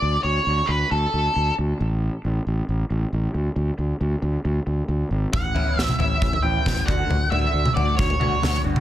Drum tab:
SD |----------------|----------------|----------------|----o-------o---|
T2 |----------------|----------------|----------------|-----o------o---|
FT |----------------|----------------|----------------|o-o---o--o--o---|
BD |----------------|----------------|----------------|o-------o---o-o-|

SD |------------o---|
T2 |-----o----o-o--o|
FT |o-o---o--o--o---|
BD |--------o-------|